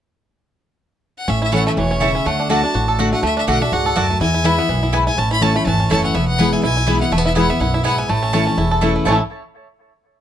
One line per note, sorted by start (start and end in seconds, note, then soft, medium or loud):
1.18 1.31 F#5 medium
1.28 1.65 A1 medium
1.28 1.75 A2 medium
1.28 1.52 C#4 medium
1.28 1.42 E5 medium
1.42 1.75 E4 medium
1.42 1.53 E5 medium
1.52 1.76 E3 medium
1.52 1.62 A3 medium
1.52 1.76 A3 loud
1.52 1.88 C#4 medium
1.52 1.76 C#4 loud
1.52 1.62 E4 medium
1.52 1.76 E4 loud
1.52 1.62 C#5 medium
1.52 1.66 F#5 medium
1.52 1.62 A5 medium
1.67 2.26 A3 medium
1.67 1.72 E5 medium
1.77 2.14 E1 medium
1.77 2.00 B2 medium
1.77 2.12 E3 medium
1.77 2.04 C#5 medium
1.91 2.14 C#4 medium
2.00 2.24 C#3 medium
2.00 2.11 A3 medium
2.00 2.11 E4 medium
2.00 2.26 E4 medium
2.00 2.11 C#5 medium
2.00 2.28 E5 medium
2.00 2.11 A5 medium
2.15 2.26 C#4 medium
2.25 2.63 D2 medium
2.25 2.48 D3 medium
2.25 2.49 A3 medium
2.25 2.50 F#5 loud
2.40 2.62 D4 medium
2.49 2.62 D3 medium
2.49 2.60 A3 medium
2.49 2.63 A3 medium
2.49 2.85 A3 medium
2.49 2.63 D4 loud
2.49 2.60 F#4 loud
2.49 2.62 F#4 loud
2.49 2.60 D5 loud
2.49 2.60 F#5 medium
2.49 2.96 A5 loud
2.63 2.97 D4 medium
2.63 2.75 D4 medium
2.63 2.74 F#4 medium
2.74 3.12 A1 medium
2.74 3.21 A2 medium
2.74 2.98 F#4 medium
2.88 3.21 A4 medium
2.98 3.12 D3 medium
2.98 3.09 A3 medium
2.98 3.12 A3 medium
2.98 3.12 D4 loud
2.98 3.34 F#4 medium
2.98 3.09 F#4 medium
2.98 3.11 F#4 loud
2.98 3.09 D5 medium
2.98 3.09 F#5 loud
3.12 3.22 A3 medium
3.12 3.23 D4 soft
3.12 3.23 F#4 medium
3.12 3.23 F#5 medium
3.23 3.42 D2 medium
3.23 3.46 D3 medium
3.23 3.47 A3 medium
3.23 3.36 E5 loud
3.37 3.60 D4 medium
3.37 3.48 E5 medium
3.47 3.68 B1 medium
3.47 3.60 D3 loud
3.47 3.57 A3 medium
3.47 3.83 A3 medium
3.47 3.61 A3 medium
3.47 3.61 D4 loud
3.47 3.57 F#4 medium
3.47 3.60 F#4 loud
3.47 3.58 D5 medium
3.47 3.58 F#5 medium
3.47 3.63 F#5 loud
3.61 3.94 D4 medium
3.61 3.72 D4 soft
3.61 3.71 F#4 medium
3.61 3.74 E5 loud
3.72 3.93 C#2 medium
3.72 3.95 G#2 medium
3.72 3.96 F#4 medium
3.72 3.98 F#5 loud
3.86 4.19 A4 medium
3.95 4.17 D2 medium
3.95 4.19 F#2 medium
3.95 4.06 A3 medium
3.95 4.06 F#4 loud
3.95 4.21 F#4 medium
3.95 4.06 D5 medium
3.95 4.06 F#5 loud
3.95 4.20 A5 loud
4.10 4.21 A3 medium
4.21 4.58 E2 medium
4.21 4.67 E2 medium
4.21 4.34 E4 medium
4.21 4.47 G#5 loud
4.34 4.45 E4 medium
4.44 4.57 E3 medium
4.44 4.58 G#3 medium
4.44 4.54 B3 medium
4.44 4.58 B3 loud
4.44 4.55 E4 medium
4.44 4.82 E4 medium
4.44 4.56 E4 loud
4.44 4.55 B4 medium
4.44 4.94 E5 loud
4.44 4.55 G#5 loud
4.58 4.91 B3 medium
4.58 4.69 B3 soft
4.58 4.68 E4 medium
4.69 5.06 B1 medium
4.69 4.92 F#2 medium
4.69 5.67 E3 medium
4.83 4.94 E4 medium
4.92 5.16 G#2 medium
4.92 5.03 B3 medium
4.92 5.03 E4 medium
4.92 5.07 E4 medium
4.92 5.03 B4 loud
4.92 5.03 G#5 medium
5.07 5.18 E4 medium
5.07 5.20 G#5 loud
5.17 5.55 A1 medium
5.17 5.64 A2 medium
5.17 5.41 C#4 medium
5.17 5.31 A5 loud
5.31 5.90 E4 medium
5.31 5.44 B5 loud
5.41 5.54 E3 medium
5.41 5.55 A3 loud
5.41 5.52 A3 medium
5.41 5.55 C#4 loud
5.41 5.77 C#4 medium
5.41 5.52 E4 loud
5.41 5.53 E4 loud
5.41 5.52 C#5 medium
5.41 5.57 A5 loud
5.41 5.52 A5 loud
5.54 5.89 A3 medium
5.54 5.66 C#4 soft
5.54 5.65 E4 medium
5.54 5.65 B5 loud
5.65 5.87 G#1 medium
5.65 6.12 E2 medium
5.65 7.07 E3 medium
5.65 5.89 A5 loud
5.80 6.03 C#4 medium
5.90 6.11 F#1 medium
5.90 6.13 E3 medium
5.90 6.00 A3 medium
5.90 6.14 A3 medium
5.90 6.14 C#4 medium
5.90 6.00 E4 medium
5.90 6.53 E4 medium
5.90 6.14 E4 loud
5.90 6.01 C#5 loud
5.90 6.03 A5 loud
5.90 6.01 A5 loud
6.04 6.15 C#4 medium
6.04 6.16 F#5 medium
6.15 6.52 E1 medium
6.15 6.61 E2 loud
6.15 6.38 B3 medium
6.15 6.27 E5 loud
6.28 6.54 F#5 loud
6.38 6.62 E3 loud
6.38 6.63 G#3 medium
6.38 6.49 B3 medium
6.38 6.74 B3 medium
6.38 6.63 B3 medium
6.38 6.49 E4 medium
6.38 6.63 E4 loud
6.38 6.49 B4 medium
6.38 6.49 G#5 loud
6.53 6.63 E4 medium
6.53 6.63 G#5 loud
6.63 7.00 B1 medium
6.63 7.10 B2 medium
6.63 6.77 E4 medium
6.63 6.98 G#5 loud
6.77 6.87 E4 medium
6.87 7.00 E3 medium
6.87 7.00 G#3 medium
6.87 6.97 B3 medium
6.87 7.01 B3 medium
6.87 6.97 E4 medium
6.87 7.26 E4 medium
6.87 6.99 E4 loud
6.87 6.97 B4 medium
6.87 6.97 G#5 medium
7.00 7.12 B3 medium
7.00 7.11 E4 medium
7.00 7.14 F#5 medium
7.11 7.49 E1 medium
7.11 7.58 E2 medium
7.11 7.18 A3 medium
7.11 7.25 E5 loud
7.18 7.37 B3 medium
7.26 7.37 E4 medium
7.26 7.36 E5 medium
7.35 7.49 E3 loud
7.35 7.49 G#3 loud
7.35 7.46 B3 medium
7.35 7.49 B3 loud
7.35 7.46 E4 medium
7.35 7.61 E4 medium
7.35 7.48 E4 loud
7.35 7.46 B4 medium
7.35 7.51 F#5 loud
7.35 7.46 G#5 medium
7.49 7.83 B3 medium
7.49 7.61 B3 medium
7.49 7.60 E4 medium
7.49 7.62 E5 medium
7.60 7.98 B1 medium
7.60 7.84 F#2 medium
7.60 7.74 E4 medium
7.60 7.75 F#5 loud
7.74 7.85 E4 medium
7.74 7.84 E5 medium
7.84 8.08 G#2 medium
7.84 7.94 B3 medium
7.84 7.94 E4 medium
7.84 8.57 E4 medium
7.84 7.95 B4 medium
7.84 7.99 F#5 medium
7.84 7.95 G#5 loud
7.98 8.09 B3 medium
7.98 8.11 G#5 medium
8.08 8.46 A1 medium
8.08 8.56 A2 medium
8.08 8.32 A3 medium
8.08 8.82 A5 loud
8.23 8.46 C#4 medium
8.33 8.46 E3 medium
8.33 8.43 A3 medium
8.33 8.69 A3 medium
8.33 8.47 A3 loud
8.33 8.47 C#4 loud
8.33 8.43 E4 medium
8.33 8.46 E4 loud
8.33 8.43 C#5 loud
8.33 8.43 A5 loud
8.47 8.80 C#4 medium
8.47 8.58 C#4 medium
8.47 8.57 E4 medium
8.57 8.95 E1 medium
8.57 9.04 E2 medium
8.57 8.81 E4 medium
8.71 9.05 A4 medium
8.81 9.05 E3 medium
8.81 8.92 A3 medium
8.81 9.06 A3 medium
8.81 9.06 C#4 medium
8.81 8.92 E4 medium
8.81 9.07 E4 medium
8.81 9.06 E4 loud
8.81 8.92 C#5 medium
8.81 8.92 A5 medium
8.96 9.05 A3 medium
9.05 9.19 A1 medium
9.05 9.17 A2 medium
9.05 9.18 E3 medium
9.05 9.17 A3 medium
9.05 9.19 A3 medium
9.05 9.18 A3 medium
9.05 9.18 C#4 loud
9.05 9.20 C#4 medium
9.05 9.17 E4 medium
9.05 9.18 E4 medium
9.05 9.17 C#5 medium
9.05 9.17 A5 medium
9.11 9.21 E4 medium
9.11 9.22 A4 medium